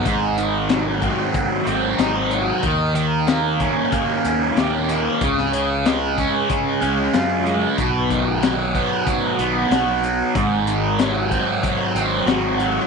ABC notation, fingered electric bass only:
X:1
M:4/4
L:1/8
Q:1/4=93
K:Ebdor
V:1 name="Fingered electric bass" clef=bass
A,,,4 z A,,, A,,,2 | E,,4 z E,, E,,2 | D,,4 z D,, G,,2 | =B,,,4 z B,,, B,,,2 |
A,,,4 z A,,, A,,,2 |]